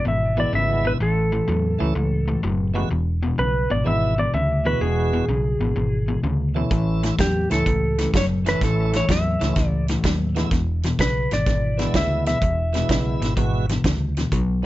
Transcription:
0.05 G#1 E2 B2 E5
0.37 E2 B2 E3 G#3 B3 E4 D5
0.53 G#1 E2 C#3 E5
0.85 E2 B2 B4
1.00 A1 A2 E3 A4
1.32 A2 E3
1.48 E2 A2 F#3
1.79 C#2 A2 E3 A3 C#4 E4
1.95 C#2 A2 E3
2.28 A2 E3
2.43 F#1 A2 F#3
2.74 A2 E3 G#3 B3 F#4
2.91 E1 E2 B2
3.23 E2 B2
3.38 B1 E2 C#3 B4
3.70 G#1 E2 B2 D5
3.84 G#1 E2 B2 E3 G#3 B3 E4 E5
4.18 E2 B2 D5
4.34 D2 E2 C#3 E5
4.64 E2 B2 E3 G#3 B3 F#4 B4
4.81 E1 E2 B2 G#4
5.13 E2 B2
5.28 B1 E2 C#3
5.60 G#1 E2 B2
5.76 G#1 E2 B2
6.08 E2 B2
6.23 D2 E2 C#3
6.55 E2 B2 E3 A3 C#4 E4
6.71 A1 A2 E3, kick, closed hi-hat
7.03 A2 E3, snare, closed hi-hat
7.18 E2 A2 F#3 G4, kick, snare, closed hi-hat
7.50 C#2 A2 E3 A3 C#4 E4 A4, snare, closed hi-hat
7.66 C#2 A2 E3, kick, closed hi-hat
7.98 A2 E3, snare, closed hi-hat
8.14 F#1 A2 F#3 C#5, kick, snare, closed hi-hat
8.45 A2 E3 A3 C#4 E4 B4, snare, closed hi-hat
8.61 A1 A2 E3 A4, kick, snare, closed hi-hat
8.93 A2 E3 C#5, snare, closed hi-hat
9.09 E2 A2 F#3 E5, kick, snare, closed hi-hat
9.40 C#2 A2 E3 A3 C#4 E4, snare, closed hi-hat
9.56 C#2 A2 E3, kick, snare, closed hi-hat
9.67 D5
9.88 A2 E3, snare, closed hi-hat
10.04 D#2 A2 F#3, kick, snare, closed hi-hat
10.35 A2 E3 G#3 B3 E4, snare, closed hi-hat
10.51 E1 E2 B2, kick, snare, closed hi-hat
10.83 E2 B2, snare, closed hi-hat
10.99 B1 E2 C#3 B4, kick, snare, closed hi-hat
11.31 G#1 E2 B2 D5, snare, closed hi-hat
11.46 G#1 E2 B2, kick, snare, closed hi-hat
11.77 E2 B2 E3 G#3 B3 E4, snare, closed hi-hat
11.94 D2 E2 C#3 E5, kick, snare, closed hi-hat
12.26 E2 B2 E5, snare, closed hi-hat
12.42 E1 E2 B2, kick, closed hi-hat
12.73 E2 B2 E3 G#3 B3 E4, snare, closed hi-hat
12.89 B1 E2 C#3, kick, snare, closed hi-hat
13.21 G#1 E2 B2, snare, closed hi-hat
13.36 G#1 E2 B2 E3 G#3 B3 F#4, kick, closed hi-hat
13.69 E2 B2, snare, closed hi-hat
13.84 D2 E2 C#3, kick, snare, closed hi-hat
14.17 E2 B2, snare, closed hi-hat
14.32 B1 B2 F#3, kick, closed hi-hat

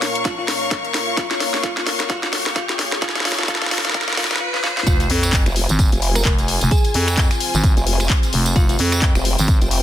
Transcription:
Already playing: A#2 A#3 F4 A#4 C#5 F5 C#6, riser
0.02 snare, open hi-hat
0.15 closed hi-hat
0.25 F4, kick, snare, closed hi-hat
0.38 F4
0.48 snare, open hi-hat
0.71 kick, snare, closed hi-hat
0.85 closed hi-hat
0.94 snare, open hi-hat
1.17 F4, kick, snare, closed hi-hat
1.31 F4, snare, closed hi-hat
1.40 snare, open hi-hat
1.54 snare
1.63 F4, kick, snare, closed hi-hat
1.77 F4, snare
1.87 snare, open hi-hat
2.00 snare, closed hi-hat
2.10 F4, kick, snare, closed hi-hat
2.23 F4, snare
2.33 snare, open hi-hat
2.46 snare
2.56 F4, kick, snare, closed hi-hat
2.69 F4, snare, closed hi-hat
2.79 snare, open hi-hat
2.92 snare
3.02 F4, kick, snare, closed hi-hat
3.09 snare
3.15 F4, snare, closed hi-hat
3.20 snare
3.25 F4, snare, open hi-hat
3.32 snare
3.38 F4, snare, closed hi-hat
3.43 snare
3.48 F4, kick, snare, closed hi-hat
3.55 snare
3.61 F4, snare, closed hi-hat
3.66 snare
3.71 F4, snare, open hi-hat
3.78 snare
3.85 F4, snare, closed hi-hat
3.90 snare
3.94 F4, kick, snare, closed hi-hat
4.01 snare
4.08 F4, snare, closed hi-hat
4.13 snare
4.17 F4, snare, open hi-hat
4.24 snare
4.31 F4, snare
4.36 snare
4.40 F4
4.54 F4, snare
4.63 F4, snare
4.77 F4, snare
4.87 F1 C4 F4 G#4, kick, closed hi-hat, tambourine, sub drop
5.00 F4, closed hi-hat, tambourine
5.10 F2, open hi-hat
5.23 finger snap, closed hi-hat, tambourine
5.29 G#5, kick, clap, closed hi-hat, tambourine
5.35 C5
5.46 F1, finger snap, closed hi-hat, tambourine
5.56 open hi-hat
5.69 G#1, closed hi-hat, tambourine
5.79 kick, closed hi-hat, tambourine
5.92 F1, closed hi-hat, tambourine
6.02 open hi-hat
6.15 A#4, finger snap, tambourine
6.25 F1 A#4, kick, clap, closed hi-hat, tambourine
6.38 closed hi-hat, tambourine
6.48 open hi-hat
6.61 F1, closed hi-hat, tambourine
6.71 G#4, kick, closed hi-hat, tambourine
6.84 closed hi-hat, tambourine
6.94 F2, open hi-hat
7.08 finger snap, closed hi-hat, tambourine
7.17 kick, clap, closed hi-hat, tambourine
7.31 finger snap, closed hi-hat, tambourine
7.40 open hi-hat
7.54 G#1, closed hi-hat, tambourine
7.64 kick, closed hi-hat, tambourine
7.77 F1, closed hi-hat, tambourine
7.87 open hi-hat
8.00 finger snap, tambourine
8.09 kick, clap, closed hi-hat, tambourine
8.23 closed hi-hat, tambourine
8.33 F1, open hi-hat
8.46 closed hi-hat, tambourine
8.56 F1 D#4 F4, kick, closed hi-hat, tambourine
8.69 F4, closed hi-hat, tambourine
8.79 F2, open hi-hat
8.92 finger snap, closed hi-hat, tambourine
9.02 G5, kick, clap, closed hi-hat, tambourine
9.15 F1, finger snap, closed hi-hat, tambourine
9.25 open hi-hat
9.38 G#1, closed hi-hat, tambourine
9.48 kick, closed hi-hat, tambourine
9.62 F1, closed hi-hat, tambourine
9.71 open hi-hat

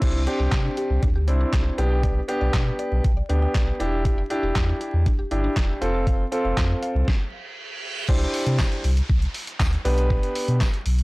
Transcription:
0.01 C2 C4 D4 E4 G4, kick, closed hi-hat, crash
0.15 E4
0.27 C4 D4 G4, closed hi-hat
0.40 C2 G4
0.52 C3, kick, snare, clap, closed hi-hat
0.65 D4
0.77 G4, closed hi-hat
0.90 C2
1.03 D2 D4, kick, closed hi-hat
1.15 G4
1.27 C2 C4 D4 E4, closed hi-hat
1.41 D4
1.53 C2 G4, kick, snare, clap, closed hi-hat
1.66 E4
1.78 B1 B3 D4 G4, closed hi-hat
1.91 G5
2.03 D5, kick, closed hi-hat
2.28 B3 D4 G4, closed hi-hat
2.41 B1 D5
2.54 B2 D4, kick, snare, clap, closed hi-hat
2.66 G5
2.79 D5, closed hi-hat
2.92 B1
3.04 B1 G5, kick, closed hi-hat
3.17 D5
3.29 D2 B3 D4 G4, closed hi-hat
3.42 G5
3.55 B1 D5, kick, snare, clap, closed hi-hat
3.68 D4
3.80 E1 D4 E4 G4, closed hi-hat
4.05 G4, kick, closed hi-hat
4.18 E4
4.30 D4 E4 G4, closed hi-hat
4.43 E1 G4
4.55 E2, kick, snare, clap, closed hi-hat
4.69 D4
4.81 G4, closed hi-hat
4.94 E2
5.06 E1 D4, kick, closed hi-hat
5.19 G4
5.31 G1 D4 E4 G4, closed hi-hat
5.44 D4
5.56 E1 G4, kick, snare, clap, closed hi-hat
5.69 E4
5.81 F1 C4 F4 A4, closed hi-hat
5.94 A5
6.07 F5, kick, closed hi-hat
6.32 C4 F4 A4, closed hi-hat
6.45 F1 F5
6.57 F2 F4, kick, snare, clap, closed hi-hat
6.70 A5
6.82 F5, closed hi-hat
6.95 C2
7.08 kick, snare, reverse cymbal
8.08 C2 D4 E4 G4 C5, kick, crash, downlifter
8.21 closed hi-hat
8.34 open hi-hat
8.46 C3, closed hi-hat
8.59 kick, snare, clap, tambourine
8.72 closed hi-hat
8.84 C2, open hi-hat
8.97 closed hi-hat
9.10 C2, kick
9.22 closed hi-hat
9.34 open hi-hat
9.47 closed hi-hat
9.60 D2, kick, snare, clap, tambourine
9.73 closed hi-hat
9.85 B1 B3 D4 G4 B4, open hi-hat
9.98 closed hi-hat
10.10 kick
10.23 closed hi-hat
10.35 open hi-hat
10.48 B2, closed hi-hat
10.61 kick, snare, clap, tambourine
10.74 closed hi-hat
10.86 B1, open hi-hat
10.99 closed hi-hat

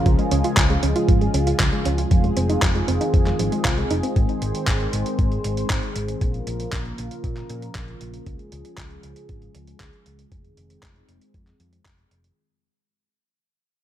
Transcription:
Already playing: C#3 F3 F4
0.06 C#2 F3 G#3 G#4, kick, closed hi-hat
0.19 G#3, closed hi-hat
0.31 C#2 C#4, closed hi-hat
0.44 F4, closed hi-hat
0.57 C#2 F3, kick, clap, closed hi-hat
0.70 G#3, closed hi-hat
0.83 C#2 C#4, closed hi-hat
0.96 F4, closed hi-hat
1.09 G#1 F3, kick, closed hi-hat
1.21 G#3, closed hi-hat
1.34 C#2 C#4, closed hi-hat
1.47 F4, closed hi-hat
1.60 C#2 F3, kick, clap, closed hi-hat
1.73 G#3, closed hi-hat
1.85 C#2 C#4, closed hi-hat
1.98 F4, closed hi-hat
2.11 F1 D#3 F3 G#3 C4, kick, closed hi-hat
2.24 G#3, closed hi-hat
2.37 F1 C4, closed hi-hat
2.49 D#4, closed hi-hat
2.62 F1 F3, kick, clap, closed hi-hat
2.75 G#3, closed hi-hat
2.88 F1 C4, closed hi-hat
3.01 D#4, closed hi-hat
3.14 F2 F3, kick, closed hi-hat
3.26 G#3, clap, closed hi-hat
3.39 G#1 F3, closed hi-hat
3.52 G#3, closed hi-hat
3.65 C2 F4, kick, clap, closed hi-hat
3.78 G#3, closed hi-hat
3.90 F1 D#4, closed hi-hat
4.03 C4, closed hi-hat
4.16 G#1 D#3 C5, kick, closed hi-hat
4.29 closed hi-hat
4.42 G#1, closed hi-hat
4.55 closed hi-hat
4.68 G#1, kick, clap, closed hi-hat
4.80 closed hi-hat
4.93 G#1, closed hi-hat
5.06 closed hi-hat
5.19 G#2, kick, closed hi-hat
5.32 closed hi-hat
5.44 G#1, closed hi-hat
5.57 closed hi-hat
5.70 G#1, kick, clap, closed hi-hat
5.83 closed hi-hat
5.96 G#1, closed hi-hat
6.08 closed hi-hat
6.21 A#1 C#3 F3 A#3 F4 A#4, kick, closed hi-hat
6.34 closed hi-hat
6.47 A#1, closed hi-hat
6.60 closed hi-hat
6.73 A#1, kick, clap, closed hi-hat
6.85 closed hi-hat
6.98 A#1, closed hi-hat
7.11 closed hi-hat
7.24 A#2, kick, closed hi-hat
7.37 clap, closed hi-hat
7.50 A#2, closed hi-hat
7.62 closed hi-hat
7.75 A#1, kick, clap, closed hi-hat
7.88 closed hi-hat
8.01 A#1, closed hi-hat
8.14 closed hi-hat
8.26 C#2 F3 G#3 G#4, kick, closed hi-hat
8.39 closed hi-hat
8.52 C#2, closed hi-hat
8.65 closed hi-hat
8.78 C#2, kick, clap, closed hi-hat
8.90 closed hi-hat
9.03 C#2, closed hi-hat
9.16 closed hi-hat
9.29 G#1, kick, closed hi-hat
9.42 closed hi-hat
9.55 C#2, closed hi-hat
9.67 closed hi-hat
9.80 C#2, kick, clap, closed hi-hat
9.93 closed hi-hat
10.06 C#2, closed hi-hat
10.19 closed hi-hat
10.31 F1 D#3 G#3 C4, kick, closed hi-hat
10.44 closed hi-hat
10.57 F1, closed hi-hat
10.70 closed hi-hat
10.83 F1, kick, clap, closed hi-hat
10.96 closed hi-hat
11.09 F1, closed hi-hat
11.21 closed hi-hat
11.34 F2, kick, closed hi-hat
11.47 clap, closed hi-hat
11.60 F2, closed hi-hat
11.73 closed hi-hat
11.86 F1, kick, clap, closed hi-hat
11.98 closed hi-hat
12.11 F1, closed hi-hat
12.24 closed hi-hat

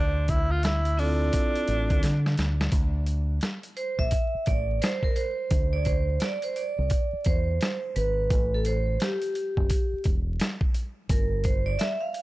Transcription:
Already playing: D2 D4
0.28 E4, kick, closed hi-hat
0.51 F4
0.63 E4, snare, closed hi-hat
0.85 closed hi-hat
0.98 C4 D4 E4 F4 A4, open hi-hat
1.33 kick, closed hi-hat
1.56 closed hi-hat
1.68 A1, closed hi-hat
1.90 D2, kick, closed hi-hat
2.03 D3, snare, closed hi-hat
2.26 snare
2.38 D2, snare, closed hi-hat
2.61 snare
2.72 D2, kick, closed hi-hat
3.06 closed hi-hat
3.41 snare, closed hi-hat
3.63 closed hi-hat
3.77 C5, closed hi-hat
3.99 A#1 E5, kick
4.11 kick, closed hi-hat
4.35 muted fingered electric bass stroke
4.46 A1 D5, kick, closed hi-hat
4.82 C5, snare, closed hi-hat
5.03 A#4, kick
5.16 C5, closed hi-hat
5.51 D2, kick, closed hi-hat
5.73 D5
5.85 C5, kick, closed hi-hat
6.20 D5, snare, closed hi-hat
6.42 C5, closed hi-hat
6.56 D5, closed hi-hat
6.78 C2
6.90 kick, closed hi-hat
7.13 muted fingered electric bass stroke
7.25 E2 C5, kick, closed hi-hat
7.61 snare, closed hi-hat
7.96 G#1 B4, closed hi-hat
8.30 A1, kick, closed hi-hat
8.54 A4
8.65 C5, closed hi-hat
9.00 G4, snare, closed hi-hat
9.22 closed hi-hat
9.35 closed hi-hat
9.57 F#1, kick
9.70 kick, closed hi-hat
9.93 muted fingered electric bass stroke
10.04 E1, kick, closed hi-hat
10.40 snare, closed hi-hat
10.61 kick
10.75 closed hi-hat
11.09 G1 A#4, kick, closed hi-hat
11.44 C5, kick, closed hi-hat
11.66 D5
11.79 E5, snare, closed hi-hat
12.01 F5
12.14 closed hi-hat

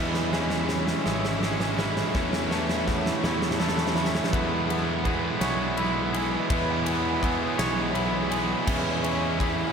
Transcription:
Already playing: E2 E3 G#3 C#4 E4 G#4 E5 C#6
0.00 C#5
0.14 snare
0.32 E3 G#3 C#4 E4, snare
0.50 snare
0.69 C#4, snare
0.87 snare
1.05 G#1 E3 G#3 C#4 E4, snare
1.25 snare
1.42 E3 G#3 C#4 E4 G#4, snare
1.60 snare
1.78 E3 G#3 C#4 E4, snare
1.97 snare
2.14 E2 E3 A3 C#4 E4 A4 B5, kick, snare
2.33 snare
2.51 E3 A3 C#4 E4, snare
2.69 snare
2.87 B3, kick, snare
3.06 snare
3.24 E2 E3 A3 C#4 E4, snare
3.42 snare
3.51 snare
3.60 E3 A3 C#4 E4 A4, snare
3.68 snare
3.78 snare
3.87 snare
3.96 E3 A3 C#4 E4, snare
4.05 snare
4.15 snare
4.24 snare
4.31 E2 E3 G#3 B3 E4 G#4 C#5 E5 B5, kick, ride
4.69 G#3 B3 E4, ride
5.04 E3 G#3 B3 E4 G#4, kick, ride
5.41 B1 E3 G#3 B3 E4 C#5, snare, ride
5.77 E3 G#3 B3 E4, ride
6.13 B3 E4 G#4, ride
6.17 G#3
6.50 E2 E3 G#3 B3 E4, kick, ride
6.86 G#3 B3 E4, ride
7.21 E3 G#3 B3 E4 G#4, kick, ride
7.58 B1 E3 G#3 B3 E4 C#5, snare, ride
7.93 E3 G#3 B3 E4, ride
8.29 G#3 B3 E4 G#4, ride
8.66 E2 E3 G#3 C#4 E4 C#6, kick, crash
9.03 G#3 C#4 E4, ride
9.39 E3 G#3 C#4 E4 G#4, kick, ride

